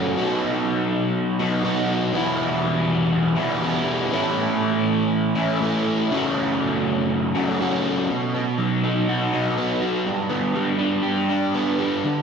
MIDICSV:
0, 0, Header, 1, 2, 480
1, 0, Start_track
1, 0, Tempo, 493827
1, 172, Time_signature, 4, 2, 24, 8
1, 11879, End_track
2, 0, Start_track
2, 0, Title_t, "Overdriven electric guitar"
2, 0, Program_c, 0, 29
2, 0, Note_on_c, 0, 42, 74
2, 0, Note_on_c, 0, 49, 68
2, 0, Note_on_c, 0, 54, 71
2, 0, Note_on_c, 0, 57, 75
2, 0, Note_on_c, 0, 61, 75
2, 0, Note_on_c, 0, 66, 69
2, 151, Note_off_c, 0, 49, 0
2, 153, Note_off_c, 0, 42, 0
2, 155, Note_on_c, 0, 47, 88
2, 158, Note_off_c, 0, 54, 0
2, 160, Note_off_c, 0, 57, 0
2, 162, Note_off_c, 0, 61, 0
2, 164, Note_off_c, 0, 66, 0
2, 168, Note_on_c, 0, 54, 84
2, 174, Note_on_c, 0, 59, 81
2, 181, Note_on_c, 0, 63, 85
2, 181, Note_on_c, 0, 66, 92
2, 1343, Note_off_c, 0, 47, 0
2, 1343, Note_off_c, 0, 66, 0
2, 1348, Note_off_c, 0, 63, 0
2, 1350, Note_off_c, 0, 54, 0
2, 1353, Note_off_c, 0, 59, 0
2, 1355, Note_on_c, 0, 66, 75
2, 1360, Note_on_c, 0, 63, 73
2, 1370, Note_on_c, 0, 59, 67
2, 1374, Note_on_c, 0, 54, 67
2, 1381, Note_on_c, 0, 47, 65
2, 1570, Note_off_c, 0, 47, 0
2, 1576, Note_off_c, 0, 54, 0
2, 1582, Note_on_c, 0, 47, 73
2, 1585, Note_off_c, 0, 66, 0
2, 1587, Note_off_c, 0, 59, 0
2, 1587, Note_on_c, 0, 54, 72
2, 1588, Note_off_c, 0, 63, 0
2, 1598, Note_on_c, 0, 63, 78
2, 1599, Note_on_c, 0, 59, 76
2, 1610, Note_on_c, 0, 66, 80
2, 2058, Note_off_c, 0, 47, 0
2, 2061, Note_off_c, 0, 54, 0
2, 2066, Note_off_c, 0, 63, 0
2, 2067, Note_off_c, 0, 59, 0
2, 2068, Note_on_c, 0, 40, 88
2, 2071, Note_on_c, 0, 47, 92
2, 2072, Note_off_c, 0, 66, 0
2, 2078, Note_on_c, 0, 52, 88
2, 2086, Note_on_c, 0, 55, 86
2, 2089, Note_on_c, 0, 59, 98
2, 2096, Note_on_c, 0, 64, 94
2, 3251, Note_off_c, 0, 64, 0
2, 3261, Note_off_c, 0, 40, 0
2, 3261, Note_off_c, 0, 59, 0
2, 3262, Note_off_c, 0, 47, 0
2, 3263, Note_on_c, 0, 64, 83
2, 3266, Note_off_c, 0, 52, 0
2, 3270, Note_off_c, 0, 55, 0
2, 3272, Note_on_c, 0, 59, 84
2, 3283, Note_on_c, 0, 55, 70
2, 3290, Note_on_c, 0, 52, 68
2, 3291, Note_on_c, 0, 47, 70
2, 3297, Note_on_c, 0, 40, 71
2, 3496, Note_off_c, 0, 40, 0
2, 3499, Note_off_c, 0, 64, 0
2, 3504, Note_off_c, 0, 59, 0
2, 3505, Note_off_c, 0, 47, 0
2, 3507, Note_off_c, 0, 52, 0
2, 3508, Note_on_c, 0, 40, 69
2, 3509, Note_off_c, 0, 55, 0
2, 3516, Note_on_c, 0, 47, 71
2, 3518, Note_on_c, 0, 52, 72
2, 3523, Note_on_c, 0, 55, 81
2, 3527, Note_on_c, 0, 59, 80
2, 3535, Note_on_c, 0, 64, 72
2, 3982, Note_off_c, 0, 40, 0
2, 3986, Note_off_c, 0, 47, 0
2, 3987, Note_off_c, 0, 52, 0
2, 3989, Note_off_c, 0, 55, 0
2, 3992, Note_off_c, 0, 59, 0
2, 3995, Note_off_c, 0, 64, 0
2, 3996, Note_on_c, 0, 45, 83
2, 4000, Note_on_c, 0, 52, 79
2, 4006, Note_on_c, 0, 57, 89
2, 4011, Note_on_c, 0, 61, 92
2, 4022, Note_on_c, 0, 64, 94
2, 5188, Note_off_c, 0, 45, 0
2, 5190, Note_off_c, 0, 52, 0
2, 5191, Note_off_c, 0, 64, 0
2, 5193, Note_off_c, 0, 57, 0
2, 5196, Note_off_c, 0, 61, 0
2, 5203, Note_on_c, 0, 64, 74
2, 5210, Note_on_c, 0, 61, 77
2, 5214, Note_on_c, 0, 57, 71
2, 5217, Note_on_c, 0, 52, 66
2, 5228, Note_on_c, 0, 45, 67
2, 5431, Note_off_c, 0, 64, 0
2, 5434, Note_off_c, 0, 61, 0
2, 5436, Note_off_c, 0, 45, 0
2, 5437, Note_off_c, 0, 57, 0
2, 5438, Note_off_c, 0, 52, 0
2, 5448, Note_on_c, 0, 45, 66
2, 5459, Note_on_c, 0, 52, 78
2, 5461, Note_on_c, 0, 57, 74
2, 5467, Note_on_c, 0, 61, 74
2, 5479, Note_on_c, 0, 64, 80
2, 5915, Note_off_c, 0, 45, 0
2, 5920, Note_off_c, 0, 52, 0
2, 5921, Note_off_c, 0, 57, 0
2, 5924, Note_off_c, 0, 61, 0
2, 5930, Note_off_c, 0, 64, 0
2, 5934, Note_on_c, 0, 42, 88
2, 5941, Note_on_c, 0, 49, 87
2, 5941, Note_on_c, 0, 54, 94
2, 5948, Note_on_c, 0, 57, 92
2, 5950, Note_on_c, 0, 61, 97
2, 5963, Note_on_c, 0, 66, 97
2, 7120, Note_off_c, 0, 42, 0
2, 7124, Note_off_c, 0, 49, 0
2, 7124, Note_off_c, 0, 54, 0
2, 7128, Note_off_c, 0, 57, 0
2, 7129, Note_off_c, 0, 61, 0
2, 7130, Note_off_c, 0, 66, 0
2, 7142, Note_on_c, 0, 66, 78
2, 7147, Note_on_c, 0, 61, 78
2, 7158, Note_on_c, 0, 57, 77
2, 7163, Note_on_c, 0, 54, 68
2, 7164, Note_on_c, 0, 42, 63
2, 7167, Note_on_c, 0, 49, 64
2, 7363, Note_off_c, 0, 66, 0
2, 7366, Note_off_c, 0, 61, 0
2, 7371, Note_off_c, 0, 49, 0
2, 7371, Note_off_c, 0, 57, 0
2, 7372, Note_off_c, 0, 42, 0
2, 7374, Note_off_c, 0, 54, 0
2, 7383, Note_on_c, 0, 42, 63
2, 7383, Note_on_c, 0, 49, 70
2, 7389, Note_on_c, 0, 54, 73
2, 7399, Note_on_c, 0, 57, 80
2, 7400, Note_on_c, 0, 61, 80
2, 7405, Note_on_c, 0, 66, 79
2, 7844, Note_off_c, 0, 49, 0
2, 7845, Note_off_c, 0, 42, 0
2, 7847, Note_off_c, 0, 54, 0
2, 7852, Note_off_c, 0, 57, 0
2, 7853, Note_off_c, 0, 61, 0
2, 7855, Note_off_c, 0, 66, 0
2, 7874, Note_on_c, 0, 47, 76
2, 8116, Note_on_c, 0, 59, 67
2, 8341, Note_on_c, 0, 54, 74
2, 8589, Note_on_c, 0, 63, 64
2, 8834, Note_on_c, 0, 66, 76
2, 9057, Note_off_c, 0, 63, 0
2, 9065, Note_off_c, 0, 47, 0
2, 9069, Note_on_c, 0, 63, 63
2, 9305, Note_off_c, 0, 59, 0
2, 9309, Note_on_c, 0, 59, 69
2, 9533, Note_off_c, 0, 54, 0
2, 9545, Note_on_c, 0, 54, 69
2, 9779, Note_off_c, 0, 54, 0
2, 9782, Note_off_c, 0, 63, 0
2, 9782, Note_on_c, 0, 43, 73
2, 9784, Note_off_c, 0, 66, 0
2, 10002, Note_off_c, 0, 59, 0
2, 10006, Note_on_c, 0, 59, 67
2, 10253, Note_on_c, 0, 55, 70
2, 10486, Note_on_c, 0, 62, 69
2, 10719, Note_on_c, 0, 67, 79
2, 10965, Note_off_c, 0, 62, 0
2, 10976, Note_off_c, 0, 43, 0
2, 10977, Note_on_c, 0, 62, 66
2, 11208, Note_off_c, 0, 59, 0
2, 11220, Note_on_c, 0, 59, 73
2, 11442, Note_off_c, 0, 55, 0
2, 11454, Note_on_c, 0, 55, 65
2, 11683, Note_off_c, 0, 67, 0
2, 11692, Note_off_c, 0, 55, 0
2, 11693, Note_off_c, 0, 62, 0
2, 11694, Note_off_c, 0, 59, 0
2, 11700, Note_on_c, 0, 50, 74
2, 11879, Note_off_c, 0, 50, 0
2, 11879, End_track
0, 0, End_of_file